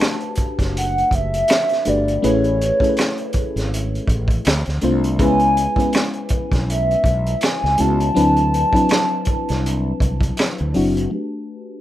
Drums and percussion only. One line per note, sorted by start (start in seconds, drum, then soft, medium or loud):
0.01 finger snap medium
0.01 snare medium
0.20 closed hi-hat soft
0.35 kick medium
0.35 closed hi-hat medium
0.59 kick medium
0.59 snare soft
0.59 closed hi-hat soft
0.77 closed hi-hat medium
0.98 closed hi-hat soft
1.11 kick medium
1.11 closed hi-hat medium
1.34 closed hi-hat soft
1.48 finger snap medium
1.48 snare medium
1.48 closed hi-hat medium
1.69 snare soft
1.69 closed hi-hat soft
1.85 closed hi-hat medium
2.08 closed hi-hat soft
2.24 closed hi-hat medium
2.44 closed hi-hat soft
2.61 closed hi-hat medium
2.80 kick medium
2.80 closed hi-hat soft
2.97 finger snap medium
2.97 snare medium
2.97 closed hi-hat medium
3.18 closed hi-hat soft
3.33 kick medium
3.33 closed hi-hat medium
3.57 snare soft
3.57 closed hi-hat soft
3.74 closed hi-hat medium
3.95 closed hi-hat soft
4.08 kick medium
4.08 closed hi-hat medium
4.28 kick medium
4.28 closed hi-hat soft
4.45 finger snap medium
4.45 snare loud
4.45 closed hi-hat medium
4.66 snare soft
4.66 closed hi-hat soft
4.81 closed hi-hat medium
5.04 closed hi-hat soft
5.19 kick medium
5.19 closed hi-hat medium
5.40 closed hi-hat soft
5.57 closed hi-hat medium
5.76 kick medium
5.76 closed hi-hat soft
5.93 finger snap medium
5.93 snare medium
5.93 closed hi-hat medium
6.13 closed hi-hat soft
6.29 kick medium
6.29 closed hi-hat medium
6.52 kick medium
6.52 snare soft
6.52 closed hi-hat soft
6.70 closed hi-hat medium
6.91 closed hi-hat soft
7.04 kick medium
7.04 closed hi-hat medium
7.27 closed hi-hat soft
7.41 finger snap medium
7.41 snare medium
7.41 closed hi-hat medium
7.65 snare soft
7.78 closed hi-hat medium
8.00 closed hi-hat soft
8.16 closed hi-hat medium
8.37 closed hi-hat soft
8.54 closed hi-hat medium
8.73 kick medium
8.73 closed hi-hat soft
8.89 finger snap medium
8.89 snare loud
8.89 closed hi-hat medium
9.25 kick medium
9.25 closed hi-hat medium
9.49 snare soft
9.49 closed hi-hat soft
9.66 closed hi-hat medium
10.00 kick medium
10.00 closed hi-hat medium
10.21 kick medium
10.21 closed hi-hat soft
10.37 finger snap medium
10.37 snare loud
10.37 closed hi-hat medium
10.58 closed hi-hat soft
10.74 open hi-hat soft
10.97 closed hi-hat soft